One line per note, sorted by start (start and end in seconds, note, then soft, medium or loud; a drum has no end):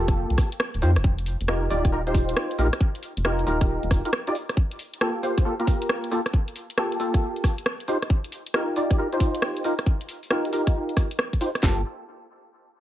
0.00 0.25 F1 medium
0.00 0.49 A#3 medium
0.00 0.49 F4 medium
0.00 0.49 G4 medium
0.00 0.49 A4 medium
0.08 kick loud
0.08 cross-stick soft
0.08 closed hi-hat medium
0.30 0.36 C2 medium
0.30 closed hi-hat soft
0.38 kick loud
0.38 cross-stick medium
0.38 open hi-hat loud
0.52 closed hi-hat medium
0.60 cross-stick loud
0.74 0.84 D1 medium
0.74 closed hi-hat soft
0.82 0.98 F2 medium
0.82 0.91 D#4 medium
0.82 0.91 F4 medium
0.82 0.91 G4 medium
0.82 0.91 C5 loud
0.82 open hi-hat loud
0.96 1.02 F1 medium
0.96 cross-stick medium
0.96 closed hi-hat medium
1.04 1.35 F1 loud
1.04 kick loud
1.18 closed hi-hat soft
1.26 open hi-hat loud
1.41 1.68 F1 medium
1.41 closed hi-hat medium
1.48 1.68 D#4 medium
1.48 1.68 F4 medium
1.48 1.68 G4 medium
1.48 1.68 A#4 medium
1.48 cross-stick loud
1.70 2.34 D#1 medium
1.70 1.90 D#4 medium
1.70 1.91 F4 medium
1.70 1.91 G4 medium
1.70 1.91 D5 medium
1.70 open hi-hat loud
1.85 kick loud
1.85 cross-stick soft
1.85 closed hi-hat medium
1.92 2.01 D#4 medium
1.92 2.01 F4 medium
1.92 2.01 G4 medium
1.92 2.01 A#4 medium
2.07 2.57 D#4 medium
2.07 2.57 F4 medium
2.07 2.57 G4 medium
2.07 2.57 C5 loud
2.07 closed hi-hat soft
2.14 kick loud
2.14 open hi-hat loud
2.29 closed hi-hat medium
2.37 cross-stick loud
2.51 closed hi-hat medium
2.58 2.70 A#1 medium
2.58 2.67 D#4 loud
2.58 2.67 F4 medium
2.58 2.67 G4 medium
2.58 2.67 A#4 loud
2.58 open hi-hat loud
2.73 cross-stick medium
2.73 closed hi-hat medium
2.81 kick loud
2.95 closed hi-hat soft
3.03 open hi-hat loud
3.17 3.44 F1 medium
3.17 closed hi-hat medium
3.25 3.45 D#4 medium
3.25 3.45 F4 medium
3.25 3.45 G4 medium
3.25 3.45 A#4 medium
3.25 cross-stick loud
3.39 closed hi-hat soft
3.47 3.78 D#1 medium
3.47 4.02 D#4 medium
3.47 4.02 F4 medium
3.47 4.02 G4 medium
3.47 4.02 A#4 loud
3.47 open hi-hat medium
3.61 kick loud
3.61 cross-stick soft
3.61 closed hi-hat medium
3.83 3.92 D#1 loud
3.83 closed hi-hat soft
3.91 4.02 F1 medium
3.91 kick loud
3.91 cross-stick medium
3.91 open hi-hat loud
4.05 4.10 D#4 medium
4.05 4.10 F4 medium
4.05 4.10 G4 medium
4.05 4.10 A#4 medium
4.05 closed hi-hat medium
4.13 cross-stick loud
4.27 4.35 D#4 medium
4.27 4.35 F4 medium
4.27 4.35 G4 medium
4.27 4.35 D5 medium
4.27 closed hi-hat medium
4.35 open hi-hat loud
4.49 cross-stick medium
4.49 closed hi-hat medium
4.57 kick loud
4.71 closed hi-hat medium
4.79 open hi-hat loud
4.94 closed hi-hat medium
5.01 5.21 A#3 medium
5.01 5.21 F4 medium
5.01 5.21 G4 medium
5.01 5.21 A4 medium
5.01 cross-stick loud
5.23 5.43 A#3 medium
5.23 5.43 F4 medium
5.23 5.43 G4 medium
5.23 5.43 C5 medium
5.23 open hi-hat loud
5.38 kick loud
5.38 cross-stick soft
5.38 closed hi-hat medium
5.45 5.54 A#3 medium
5.45 5.54 F4 medium
5.45 5.54 G4 medium
5.45 5.54 A4 medium
5.60 6.10 A#3 medium
5.60 6.10 F4 medium
5.60 6.10 G4 medium
5.60 6.10 A#4 medium
5.60 closed hi-hat soft
5.67 kick loud
5.67 open hi-hat medium
5.82 closed hi-hat medium
5.89 cross-stick loud
6.04 closed hi-hat medium
6.11 6.20 A#3 loud
6.11 6.20 F4 medium
6.11 6.20 G4 medium
6.11 6.20 A4 loud
6.11 open hi-hat loud
6.26 cross-stick medium
6.26 closed hi-hat medium
6.34 kick loud
6.48 closed hi-hat medium
6.56 open hi-hat loud
6.70 closed hi-hat medium
6.78 6.98 A#3 medium
6.78 6.98 F4 medium
6.78 6.98 G4 medium
6.78 6.98 A4 loud
6.78 cross-stick loud
6.92 closed hi-hat soft
7.00 7.55 A#3 medium
7.00 7.55 F4 medium
7.00 7.55 G4 medium
7.00 7.55 A4 medium
7.00 open hi-hat loud
7.14 kick loud
7.14 cross-stick soft
7.14 closed hi-hat medium
7.36 closed hi-hat soft
7.44 kick loud
7.44 cross-stick medium
7.44 open hi-hat loud
7.58 closed hi-hat medium
7.66 cross-stick loud
7.80 closed hi-hat medium
7.88 7.97 D#4 medium
7.88 7.97 F4 medium
7.88 7.97 G4 medium
7.88 7.97 C5 loud
7.88 open hi-hat loud
8.02 cross-stick medium
8.02 closed hi-hat medium
8.10 kick loud
8.24 closed hi-hat medium
8.32 open hi-hat loud
8.46 closed hi-hat medium
8.54 8.74 D#4 medium
8.54 8.74 F4 medium
8.54 8.74 G4 medium
8.54 8.74 A#4 medium
8.54 cross-stick loud
8.76 8.96 D#4 medium
8.76 8.96 F4 medium
8.76 8.96 G4 medium
8.76 8.96 D5 medium
8.76 open hi-hat loud
8.91 kick loud
8.91 cross-stick soft
8.91 closed hi-hat medium
8.98 9.07 D#4 medium
8.98 9.07 F4 medium
8.98 9.07 G4 medium
8.98 9.07 A#4 medium
9.13 9.63 D#4 medium
9.13 9.63 F4 medium
9.13 9.63 G4 medium
9.13 9.63 C5 loud
9.13 closed hi-hat soft
9.20 kick medium
9.20 open hi-hat loud
9.35 closed hi-hat medium
9.42 cross-stick loud
9.57 closed hi-hat medium
9.64 9.73 D#4 loud
9.64 9.73 F4 medium
9.64 9.73 G4 medium
9.64 9.73 A#4 loud
9.64 open hi-hat loud
9.79 cross-stick medium
9.79 closed hi-hat medium
9.86 kick loud
10.01 closed hi-hat medium
10.09 open hi-hat loud
10.23 open hi-hat medium
10.31 10.51 D#4 medium
10.31 10.51 F4 medium
10.31 10.51 G4 medium
10.31 10.51 A#4 medium
10.31 cross-stick loud
10.45 closed hi-hat soft
10.53 11.08 D#4 medium
10.53 11.08 F4 medium
10.53 11.08 G4 medium
10.53 11.08 A#4 medium
10.53 open hi-hat loud
10.67 kick loud
10.67 cross-stick soft
10.67 closed hi-hat medium
10.89 closed hi-hat soft
10.97 kick loud
10.97 cross-stick medium
10.97 open hi-hat loud
11.11 closed hi-hat medium
11.19 cross-stick loud
11.33 kick medium
11.33 closed hi-hat medium
11.41 11.50 D#4 medium
11.41 11.50 F4 medium
11.41 11.50 G4 medium
11.41 11.50 C5 loud
11.41 open hi-hat loud
11.55 cross-stick medium
11.55 closed hi-hat medium
11.63 11.83 G1 medium
11.63 11.81 A#3 medium
11.63 11.81 F4 medium
11.63 11.81 G4 medium
11.63 11.81 A4 loud
11.63 kick loud
11.63 snare loud
11.63 clap medium